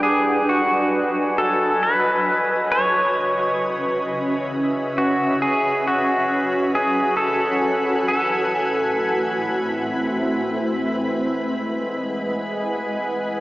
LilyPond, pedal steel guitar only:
\new Staff \with { instrumentName = "Pedal steel guitar" } { \time 3/4 \key gis \phrygian \tempo 4 = 67 gis'8 fis'4 a'8 b'4 | cis''2 r8 fis'8 | gis'8 fis'4 gis'8 a'4 | a'2 r4 |
r2. | }